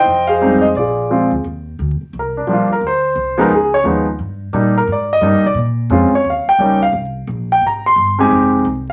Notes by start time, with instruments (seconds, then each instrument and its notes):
Already playing: grand piano C5 D#5 G5
0.06 upright bass F2
0.27 grand piano G#4 C5 F5
0.41 grand piano G3 G#3 C4 D#4
0.62 grand piano D#5
0.75 upright bass A#1, grand piano F4 G#4 D5
1.10 grand piano F3 G#3 C4 F4
1.31 upright bass D2
1.44 upright bass D#2
1.79 upright bass D2
2.01 muted upright bass stroke
2.13 upright bass C2
2.19 grand piano A#4
2.37 grand piano D4
2.47 upright bass A#1, grand piano F3 G3 A#3 D4
2.53 grand piano F4
2.69 muted upright bass stroke
2.73 grand piano A#4
2.81 upright bass D2
2.87 grand piano C5
3.16 upright bass C2
3.38 grand piano F3 G#3 B3 D#4 A#4
3.50 upright bass C#2
3.55 grand piano G#4
3.74 grand piano C#5
3.84 upright bass D#2, grand piano F3 G#3 B3 D#4
4.19 upright bass G2
4.53 upright bass A#2, grand piano G3 A#3 D4 D#4
4.78 grand piano A#4
4.87 upright bass G#2
4.92 grand piano D5
5.13 grand piano D#5
5.21 upright bass G2, grand piano G3 A#3 D4 D#4
5.32 upright bass D#2
5.44 upright bass C2, grand piano D5
5.55 upright bass A#2
5.90 upright bass F2, grand piano G#3 C4 C#4 F4
6.11 grand piano C#5, muted upright bass stroke
6.24 upright bass D#2
6.30 grand piano F5
6.46 grand piano G5, muted upright bass stroke
6.59 upright bass C#2, grand piano G3 A#3 C#4 D#4
6.83 grand piano F5
6.93 upright bass C2
7.27 upright bass A#1
7.52 grand piano G5
7.62 upright bass G#1
7.67 grand piano A#5
7.86 grand piano C6
7.96 upright bass G1
8.18 grand piano G#3 C4 D#4 G4 G#5
8.31 upright bass F1
8.65 upright bass C2